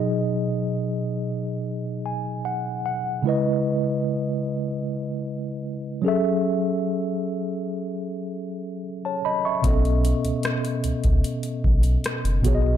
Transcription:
<<
  \new Staff \with { instrumentName = "Tine electric piano" } { \time 4/4 \key fis \dorian \tempo 4 = 75 << { r2 r8 gis''8 fis''8 fis''8 | r1 | r2. r16 <cis'' a''>16 <dis'' b''>16 <e'' cis'''>16~ | <e'' cis'''>16 r2. r8. | } \\ { <b, fis dis' gis' dis''>2.~ <b, fis dis' gis' dis''>8 r8 | <cis gis e' b' dis''>2.~ <cis gis e' b' dis''>8 <fis cis' gis' a' e''>8~ | <fis cis' gis' a' e''>2.~ <fis cis' gis' a' e''>8 r8 | <b, b cis' a' dis''>2.~ <b, b cis' a' dis''>8 <b, b fis' gis' cis'' dis''>8 | } >> }
  \new Staff \with { instrumentName = "Sub bass" } { \clef bass \time 4/4 \key fis \dorian r1 | r1 | r1 | b,,8. cis,16 r8 cis,16 cis,16 r8 b,,8 r16 fis,,16 b,,8 | }
  \new DrumStaff \with { instrumentName = "Drums" } \drummode { \time 4/4 r4 r4 r4 r4 | r4 r4 r4 r4 | r4 r4 r4 r4 | <hh bd>16 hh16 hh16 hh16 <hh ss>16 hh16 hh16 <hh bd>16 hh16 hh16 bd16 hh16 <hh ss>16 hh16 <hh bd>8 | }
>>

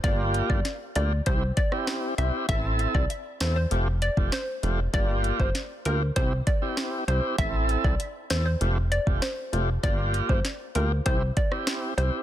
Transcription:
<<
  \new Staff \with { instrumentName = "Synth pluck" } { \time 4/4 \key g \dorian \tempo 4 = 98 d''8 r16 d''16 r8 d''16 r16 c''16 r16 d''16 r8. e''16 r16 | e''16 r8 d''16 r8 c''16 c''16 r8 d''16 r16 c''8. r16 | d''8 r16 c''16 r8 bes'16 r16 c''16 r16 d''16 r8. c''16 r16 | e''16 r8 d''16 r8 c''16 c''16 r8 d''16 r16 c''8. r16 |
d''8 r16 c''16 r8 bes'16 r16 c''16 r16 d''16 r8. c''16 r16 | }
  \new Staff \with { instrumentName = "Tonewheel organ" } { \time 4/4 \key g \dorian <bes f' g'>4 r8 <bes f' g'>16 r16 <c' e' g'>16 r8 <c' e' g'>8. <c' e' g'>8 | <c' e' a'>4 r8 <c' e' a'>16 r16 <a f' g'>16 r8 <a f' g'>16 r8 <a f' g'>16 r16 | <bes f' g'>4 r8 <bes f' g'>16 r16 <c' e' g'>16 r8 <c' e' g'>8. <c' e' g'>8 | <c' e' a'>4 r8 <c' e' a'>16 r16 <a f' g'>16 r8 <a f' g'>16 r8 <a f' g'>16 r16 |
<bes f' g'>4 r8 <bes f' g'>16 r16 <c' e' g'>16 r8 <c' e' g'>8. <c' e' g'>8 | }
  \new Staff \with { instrumentName = "Analog synth bass" } { \clef bass \time 4/4 \key g \dorian g,,8. g,,16 r8 d,8 c,8 r4 c,16 r16 | a,,8. c,16 r8 e,8 f,,8. f,,16 r8 f,,8 | g,,8. g,,16 r8 d,8 c,8 r4 c,16 r16 | a,,8. c,16 r8 e,8 f,,8. f,,16 r8 f,,8 |
g,,8. g,,16 r8 d,8 c,8 r4 c,16 r16 | }
  \new DrumStaff \with { instrumentName = "Drums" } \drummode { \time 4/4 <hh bd>8 hh16 bd16 <hh sn>8 hh8 <hh bd>8 <hh bd>16 ss16 <hh ss sn>8 hh8 | <hh bd>8 hh16 bd16 hh8 <hh ss sn>8 hh8 hh16 bd16 <hh ss sn>8 hh8 | <hh bd>8 hh16 bd16 <hh sn>8 hh8 <hh bd>8 <hh bd>8 <hh ss sn>8 hh8 | <hh bd>8 hh16 bd16 hh8 <hh ss sn>8 hh8 hh16 bd16 <hh ss sn>8 hh8 |
<hh bd>8 hh16 bd16 <hh sn>8 hh8 <hh bd>8 <hh bd>16 ss16 <hh ss sn>8 hh8 | }
>>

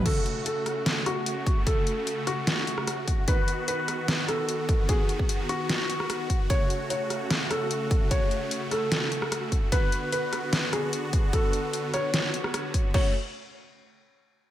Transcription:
<<
  \new Staff \with { instrumentName = "Felt piano" } { \time 4/4 \key fis \minor \tempo 4 = 149 a'4 a'4. fis'4. | a'4. fis'2~ fis'8 | b'4 b'4. a'4. | gis'4. fis'2~ fis'8 |
cis''4 cis''4. a'4. | cis''4. a'2~ a'8 | b'4 b'4. gis'4. | a'4. cis''2~ cis''8 |
cis''8 r2. r8 | }
  \new Staff \with { instrumentName = "Supersaw synth" } { \time 4/4 \key fis \minor << { fis'1~ | fis'1~ | fis'1~ | fis'1~ |
fis'1~ | fis'1 | fis'1~ | fis'1 |
<cis a fis'>8 r2. r8 | } \\ { <cis a>1~ | <cis a>1 | <dis b>1~ | <dis b>1 |
<cis a>1~ | <cis a>1 | <d b>1~ | <d b>1 |
r1 | } >> }
  \new DrumStaff \with { instrumentName = "Drums" } \drummode { \time 4/4 <cymc hh bd>8 hh8 hh8 <hh ss>8 <hh sn>8 <hh ss>8 hh8 <hh bd>8 | <hh bd>8 hh8 hh8 <hh ss>8 <hh sn>8 hh16 ss16 <hh ss>8 <hh bd>8 | <hh bd>8 hh8 hh8 <hh ss>8 <hh sn>8 <hh ss>8 hh8 <hh bd>8 | <hh bd>8 hh16 bd16 hh8 <hh ss>8 <hh sn>8 hh16 ss16 <hh ss>8 <hh bd>8 |
<hh bd>8 hh8 hh8 <hh ss>8 <hh sn>8 <hh ss>8 hh8 <hh bd>8 | <hh bd>8 hh8 hh8 <hh ss>8 <hh sn>8 hh16 ss16 <hh ss>8 <hh bd>8 | <hh bd>8 hh8 hh8 <hh ss>8 <hh sn>8 <hh ss>8 hh8 <hh bd>8 | <hh bd>8 hh8 hh8 <hh ss>8 <hh sn>8 hh16 ss16 <hh ss>8 <hh bd>8 |
<cymc bd>4 r4 r4 r4 | }
>>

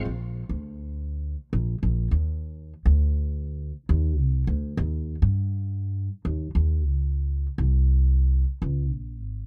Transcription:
\new Staff \with { instrumentName = "Upright bass" } { \clef bass \time 4/4 \key bes \mixolydian \tempo 4 = 102 bes,,8. d,4. r16 bes,,8 bes,,8 ees,8~ | ees,8. d,4. r16 ees,8 c,8 d,8 | ees,8. g,4. r16 ees,8 ees,8 des,8~ | des,8. c,4. r16 des,8 bes,,8 aes,,8 | }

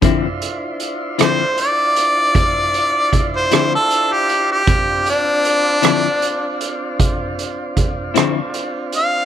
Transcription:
<<
  \new Staff \with { instrumentName = "Harmonica" } { \time 12/8 \key d \minor \tempo 4. = 52 r4. c''8 d''2~ d''16 c''8 a'8 g'8 g'16~ | g'8 d'2 r2. f''8 | }
  \new Staff \with { instrumentName = "Tonewheel organ" } { \time 12/8 \key d \minor <d' e' f' c''>1. | <c' d' f'>1. | }
  \new Staff \with { instrumentName = "Clean electric guitar" } { \clef bass \time 12/8 \key d \minor <d f c' e'>8 r4 <d f c' e'>8 r2 r8 <d f c' e'>8 r4 | r4. <d f c' e'>8 r2 r8 <d f c' e'>8 r4 | }
  \new DrumStaff \with { instrumentName = "Drums" } \drummode { \time 12/8 <hh bd>8 hh8 hh8 <hh ss>8 hh8 hh8 <hh bd>8 hh8 <hh bd>8 <hh ss>8 hh8 hh8 | <hh bd>8 hh8 hh8 <hh ss>8 hh8 hh8 <hh bd>8 hh8 <hh bd>8 <hh ss>8 hh8 hh8 | }
>>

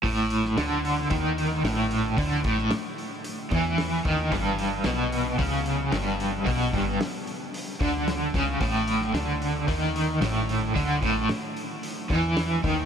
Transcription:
<<
  \new Staff \with { instrumentName = "Overdriven electric guitar" } { \clef bass \time 4/4 \key a \mixolydian \tempo 4 = 112 a,4 d4 dis4 a,4 | d8 a,8 r4. e4 dis8 | g,4 b,4 cis4 g,4 | b,8 g,8 r4. d4 cis8 |
a,4 d4 dis4 a,4 | d8 a,8 r4. e4 dis8 | }
  \new Staff \with { instrumentName = "Fingered electric bass" } { \clef bass \time 4/4 \key a \mixolydian a,,4 d,4 dis,4 a,,4 | d,8 a,,8 r4. e,4 dis,8 | g,,4 b,,4 cis,4 g,,4 | b,,8 g,,8 r4. d,4 cis,8 |
a,,4 d,4 dis,4 a,,4 | d,8 a,,8 r4. e,4 dis,8 | }
  \new DrumStaff \with { instrumentName = "Drums" } \drummode { \time 4/4 <hho bd>8 hho16 sn16 <hho sn>8 hho8 <hho bd>8 hho8 <hho sn>8 hho8 | <hho bd>8 <hho bd>16 sn16 <hho sn>8 hho8 hho8 <hho bd>8 <hho sn>8 <hho bd>8 | <hho bd>8 hho8 <hho sn>8 hho8 <hho bd>8 hho8 <hho sn>8 hho8 | <hho bd>8 <hho bd>8 <hho sn>8 hho8 hho8 <hho bd>8 <hho sn>8 <hho bd>8 |
<hho bd>8 hho16 sn16 <hho sn>8 hho8 <hho bd>8 hho8 <hho sn>8 hho8 | <hho bd>8 <hho bd>8 <hho sn>8 hho8 hho8 <hho bd>8 <hho sn>8 <hho bd>8 | }
>>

